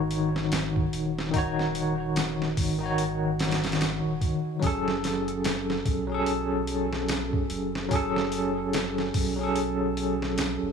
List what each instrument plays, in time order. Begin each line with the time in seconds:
Already playing: sub bass G#1, tine electric piano D#3 D#4 F#4 C#5
0.11 open hi-hat
0.36 snare
0.52 snare, open hi-hat
0.76 kick
0.93 sub bass D#1, open hi-hat
1.19 snare
1.31 tine electric piano D#3 D#4, kick, open hi-hat
1.36 tine electric piano F#4 C#5
1.59 snare
1.75 open hi-hat
2.16 snare, open hi-hat
2.42 snare
2.57 sub bass G#1, kick, open hi-hat
2.78 tine electric piano D#3 D#4
2.83 tine electric piano F#4 C#5
2.98 open hi-hat
3.39 snare, open hi-hat
3.51 snare, open hi-hat
3.64 snare, open hi-hat
3.72 snare, open hi-hat
3.81 snare, open hi-hat
4.05 sub bass D#1
4.21 kick, open hi-hat
4.60 sub bass F#1, tine electric piano F#3 C#4, kick, open hi-hat
4.64 tine electric piano G#4 A4
4.88 snare
5.04 snare, open hi-hat
5.28 closed hi-hat
5.44 snare, open hi-hat
5.70 snare
5.85 sub bass B1, kick, open hi-hat
6.07 tine electric piano F#3 C#4
6.12 tine electric piano G#4 A4
6.26 open hi-hat
6.67 open hi-hat
6.93 snare
7.08 snare, open hi-hat
7.33 kick
7.50 sub bass F#1, open hi-hat
7.75 snare
7.88 tine electric piano F#3 C#4, kick, open hi-hat
7.93 tine electric piano G#4 A4
8.16 snare
8.32 open hi-hat
8.73 snare, open hi-hat
8.98 snare
9.14 sub bass B1, kick, open hi-hat
9.36 tine electric piano F#3 C#4
9.41 tine electric piano G#4 A4
9.56 open hi-hat
9.97 open hi-hat
10.22 snare
10.38 snare, open hi-hat
10.62 sub bass F#1